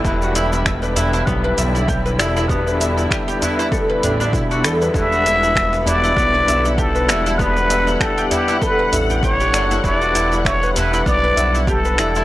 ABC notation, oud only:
X:1
M:4/4
L:1/16
Q:"Swing 16ths" 1/4=98
K:Em
V:1 name="Oud"
E F E E e B E E B, B e E G B E E | B, B e E G G E E A B D D E F A B | E F E E e B E E B, B e E G B E E | B, B e E G G E E A B e G G G D E |
E F E E e B E E B, B e E G B E E |]